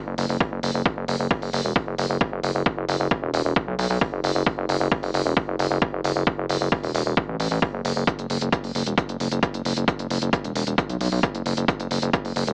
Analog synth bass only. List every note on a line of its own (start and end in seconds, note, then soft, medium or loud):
0.07 0.14 F#1 medium
0.18 0.26 F#1 loud
0.29 0.37 F#1 medium
0.52 0.60 F#1 medium
0.63 0.71 F#1 medium
0.74 0.82 F#1 medium
0.97 1.05 F#1 medium
1.08 1.16 F#1 loud
1.20 1.27 F#1 medium
1.42 1.50 F#1 medium
1.53 1.61 F#1 loud
1.65 1.72 E1 medium
1.87 1.95 F#1 medium
1.98 2.06 F#1 loud
2.10 2.17 F#1 medium
2.32 2.40 F#1 medium
2.43 2.51 F#1 medium
2.55 2.63 F#1 medium
2.77 2.85 F#1 medium
2.89 2.96 F#1 loud
3.00 3.08 F#1 medium
3.22 3.30 E1 medium
3.34 3.42 E1 loud
3.45 3.53 E1 medium
3.68 3.75 B1 medium
3.79 3.87 B1 loud
3.90 3.98 B1 medium
4.13 4.20 F#1 medium
4.24 4.32 F#1 loud
4.35 4.43 F#1 medium
4.58 4.66 F#1 medium
4.69 4.77 F#1 loud
4.80 4.88 F#1 medium
5.03 5.11 F#1 medium
5.14 5.22 F#1 loud
5.26 5.33 E1 medium
5.48 5.56 F#1 medium
5.59 5.67 F#1 loud
5.71 5.78 F#1 medium
5.93 6.01 F#1 medium
6.04 6.12 F#1 loud
6.16 6.23 F#1 medium
6.38 6.46 F#1 medium
6.49 6.57 F#1 medium
6.61 6.69 F#1 medium
6.83 6.91 E1 medium
6.95 7.02 E1 loud
7.06 7.14 E1 medium
7.29 7.36 A1 medium
7.40 7.48 A1 medium
7.51 7.59 A1 medium
7.74 7.81 F#1 medium
7.85 7.93 F#1 loud
7.96 8.04 F#1 medium
8.19 8.26 F#1 medium
8.30 8.38 F#1 loud
8.41 8.49 F#1 medium
8.64 8.72 F#1 medium
8.75 8.83 F#1 loud
8.86 8.94 E1 medium
9.09 9.17 F#1 medium
9.20 9.28 F#1 medium
9.32 9.39 F#1 medium
9.54 9.62 F#1 medium
9.65 9.73 F#1 loud
9.77 9.84 F#1 medium
9.99 10.07 F#1 medium
10.10 10.18 F#1 loud
10.22 10.30 F#1 medium
10.44 10.52 E1 medium
10.55 10.63 E1 loud
10.67 10.75 E1 medium
10.89 10.97 B1 medium
11.01 11.08 B1 medium
11.12 11.20 B1 medium
11.35 11.42 F#1 medium
11.46 11.54 F#1 loud
11.57 11.65 F#1 medium
11.80 11.87 F#1 medium
11.91 11.99 F#1 loud
12.02 12.10 F#1 medium
12.25 12.33 F#1 medium
12.36 12.44 F#1 loud
12.47 12.53 E1 medium